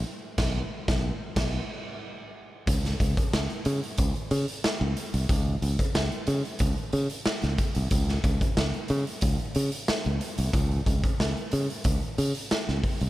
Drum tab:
CC |--x-----x-------|----------------|----------------|----------------|
HH |----------------|xxxx-xxxxxxx--xx|x-xx-xxxxxxx-xxx|x-xx-xxxxxxx-xxx|
SD |--o--o--o-------|-o--o-------o---|----o-------oo--|-o--o-------o---|
BD |--o--o--o-------|o-oo----o-------|o--o----o-----o-|o-oo----o-------|

CC |----------------|
HH |xxxx-xxxxxxx--ox|
SD |----o-------oo--|
BD |o-oo----o-----o-|